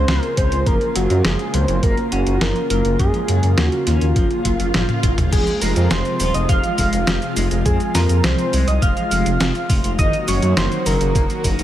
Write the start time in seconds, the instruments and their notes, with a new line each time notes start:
Already playing: analog synth pad C#3 G#3 F4 C5, analog synth lead C5
0.08 detuned saw bass C#2, clean electric guitar C4, snare, closed hi-hat
0.21 analog synth lead A#4, closed hi-hat
0.37 detuned saw bass C#2, clean electric guitar C#4, analog synth lead C5, kick, closed hi-hat
0.52 detuned saw bass C#2, closed hi-hat
0.66 detuned saw bass F#1, analog synth pad C#3 A#3 F4, clean electric guitar F3, analog synth lead A#4, kick, closed hi-hat
0.81 closed hi-hat
0.96 detuned saw bass F#1, clean electric guitar F#3, analog synth lead F#4, closed hi-hat
1.10 detuned saw bass F#2, closed hi-hat
1.25 detuned saw bass F#1, clean electric guitar F3, analog synth lead G#4, snare, closed hi-hat
1.39 closed hi-hat
1.54 detuned saw bass C#2, clean electric guitar F#3, analog synth lead C5, closed hi-hat
1.68 detuned saw bass F#1, closed hi-hat
1.83 detuned saw bass F#1, clean electric guitar A#3, analog synth lead A#4, kick, closed hi-hat
1.97 closed hi-hat
2.12 detuned saw bass F#1, clean electric guitar C#4, analog synth lead F#4, closed hi-hat
2.27 detuned saw bass F#1, closed hi-hat
2.41 detuned saw bass F#1, clean electric guitar F3, analog synth lead A#4, snare, closed hi-hat
2.56 closed hi-hat
2.70 detuned saw bass F#1, clean electric guitar F#3, analog synth lead A#4, closed hi-hat
2.85 detuned saw bass F#1, closed hi-hat
2.99 detuned saw bass F#2, clean electric guitar F3, analog synth lead G#4, kick, closed hi-hat
3.14 closed hi-hat
3.28 detuned saw bass F#2, clean electric guitar F#3, closed hi-hat
3.43 detuned saw bass F#2, closed hi-hat
3.58 detuned saw bass D#2, clean electric guitar A#3, analog synth lead F#4, snare, closed hi-hat
3.72 closed hi-hat
3.87 detuned saw bass D#2, clean electric guitar C#4, analog synth lead F4, snare, closed hi-hat
4.01 detuned saw bass D#2, closed hi-hat
4.16 detuned saw bass F#1, clean electric guitar F3, kick, closed hi-hat, swell
4.31 closed hi-hat
4.45 detuned saw bass F#1, clean electric guitar F#3, kick, closed hi-hat
4.60 detuned saw bass F#1, closed hi-hat
4.74 detuned saw bass F#1, clean electric guitar F3, snare, closed hi-hat, high tom
4.89 closed hi-hat, high tom
5.03 detuned saw bass F#1, clean electric guitar F#3, kick, closed hi-hat
5.18 detuned saw bass F#1, closed hi-hat, mid tom
5.32 detuned saw bass F1, analog synth pad C3 F3 G#3 F4, clean electric guitar F3, analog synth lead G#4, fm electric piano G#5, kick, closed hi-hat, crash, cabasa
5.47 closed hi-hat, cabasa
5.62 detuned saw bass F1, clean electric guitar G#3, analog synth lead A#4, fm electric piano A#5, open hi-hat, cabasa
5.76 detuned saw bass F2, closed hi-hat, cabasa
5.91 detuned saw bass F1, clean electric guitar C4, analog synth lead C5, fm electric piano C6, snare, closed hi-hat, cabasa
6.05 closed hi-hat, cabasa
6.20 detuned saw bass D#1, clean electric guitar F4, open hi-hat, cabasa
6.34 detuned saw bass F1, analog synth lead D#5, fm electric piano D#6, closed hi-hat, cabasa
6.49 detuned saw bass F1, clean electric guitar F3, analog synth lead F5, fm electric piano F6, kick, closed hi-hat, cabasa
6.63 closed hi-hat, cabasa
6.78 detuned saw bass F1, clean electric guitar G#3, kick, open hi-hat, cabasa
6.93 detuned saw bass F1, closed hi-hat, cabasa
7.07 detuned saw bass F1, clean electric guitar F3, snare, closed hi-hat, cabasa
7.22 closed hi-hat, cabasa
7.36 detuned saw bass F1, clean electric guitar G#3, open hi-hat, cabasa
7.51 detuned saw bass F1, closed hi-hat, cabasa
7.66 detuned saw bass F2, clean electric guitar C4, analog synth lead G#4, fm electric piano G#5, kick, closed hi-hat, cabasa
7.80 closed hi-hat, cabasa
7.95 detuned saw bass F2, clean electric guitar F4, analog synth lead A#4, fm electric piano A#5, snare, open hi-hat, cabasa
8.09 detuned saw bass F2, closed hi-hat, cabasa
8.24 detuned saw bass C2, clean electric guitar F3, analog synth lead C5, fm electric piano C6, snare, closed hi-hat, cabasa
8.39 closed hi-hat, cabasa
8.53 detuned saw bass C2, clean electric guitar G#3, open hi-hat, cabasa
8.68 detuned saw bass C2, analog synth lead D#5, fm electric piano D#6, closed hi-hat, cabasa
8.82 detuned saw bass F1, clean electric guitar F3, analog synth lead F5, fm electric piano F6, kick, closed hi-hat, cabasa
8.97 closed hi-hat, cabasa
9.11 detuned saw bass F1, clean electric guitar G#3, open hi-hat, cabasa
9.26 detuned saw bass F1, closed hi-hat, cabasa
9.40 detuned saw bass F1, clean electric guitar C4, snare, closed hi-hat, cabasa
9.55 closed hi-hat, cabasa
9.70 detuned saw bass F1, clean electric guitar F4, kick, open hi-hat, cabasa
9.84 detuned saw bass F1, closed hi-hat, cabasa
9.99 detuned saw bass F#1, clean electric guitar D#3, analog synth pad D#3 F#3 A#3 F#4, analog synth lead D#5, fm electric piano D#6, kick, closed hi-hat, cabasa
10.13 closed hi-hat, cabasa
10.28 detuned saw bass F#1, clean electric guitar F#3, analog synth lead C#5, fm electric piano C#6, open hi-hat, cabasa
10.42 detuned saw bass F#2, closed hi-hat, cabasa
10.57 detuned saw bass F#1, clean electric guitar D#3, analog synth lead C5, fm electric piano C6, snare, closed hi-hat, cabasa
10.72 closed hi-hat, cabasa
10.86 detuned saw bass F#1, clean electric guitar F#3, analog synth lead A#4, fm electric piano A#5, open hi-hat, cabasa
11.01 detuned saw bass F#1, closed hi-hat, cabasa
11.15 detuned saw bass F#1, clean electric guitar A#3, kick, closed hi-hat, cabasa
11.30 closed hi-hat, cabasa
11.44 detuned saw bass F#1, clean electric guitar D#4, kick, open hi-hat, cabasa
11.59 detuned saw bass F#1, closed hi-hat, cabasa